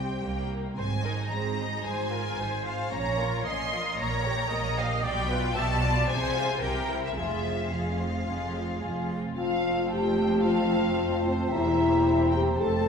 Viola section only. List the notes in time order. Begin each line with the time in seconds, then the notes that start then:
Already playing: G4
0.78 C5
1.05 A#4
1.33 G#4
1.85 C5
2.12 A#4
2.39 C5
2.92 C#5
3.45 D#5
3.98 C#5
4.51 D#5
5.03 D5
5.29 B4
5.55 E5
5.82 D5
6.08 C5
6.61 A#4
7.16 G#4
9.38 A3 F4
11.52 A#3 G4
12.59 A3 A4